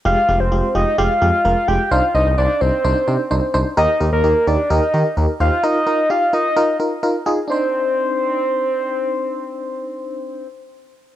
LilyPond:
<<
  \new Staff \with { instrumentName = "Soft synth lead" } { \time 4/4 \key c \minor \tempo 4 = 129 f''8. c''8. ees''8 f''4. g''8 | f''8 ees''8 d''8 c''2 r8 | ees''8. bes'8. d''8 ees''4 r8 f''8 | ees''4 f''8 ees''4 r4. |
c''1~ | c''1 | }
  \new Staff \with { instrumentName = "FM electric piano" } { \time 4/4 \key c \minor <aes f' g'>8 <aes f' g'>8 <aes f' g'>8 <aes f' g'>8 <aes f' g'>8 <aes f' g'>8 <aes f' bes'>8 <aes f' g'>8 | <d' ees' c''>8 <d' ees' c''>8 <d' ees' c''>8 <d' ees' c''>8 <d' ees' c''>8 <d' ees' c''>8 <d' ees' c''>8 <d' ees' c''>8 | <ees' g' bes'>8 <ees' g' bes'>8 <ees' g' bes'>8 <ees' g' bes'>8 <ees' g' bes'>8 <ees' g' bes'>8 <ees' g' bes'>8 <ees' g' c''>8 | <ees' f' bes'>8 <ees' f' bes'>8 <ees' f' g'>8 <ees' f' bes'>8 <ees' f' bes'>8 <ees' f' bes'>8 <ees' f' bes'>8 <ees' f' aes'>8 |
<d' ees' c''>1~ | <d' ees' c''>1 | }
  \new Staff \with { instrumentName = "Analog synth bass" } { \clef bass \time 4/4 \key c \minor f,,16 r16 f,,16 f,,16 f,,16 r16 f,,16 r16 f,,16 r16 f,16 r16 f,,16 r16 f,,16 r16 | c,16 r16 c,16 c,16 c,16 r16 c,16 r16 c,16 r16 c16 r16 c,16 r16 c,16 r16 | ees,16 r16 ees,16 ees,16 ees,16 r16 ees,16 r16 ees,16 r16 ees16 r16 ees,16 r16 ees,16 r16 | r1 |
r1 | r1 | }
>>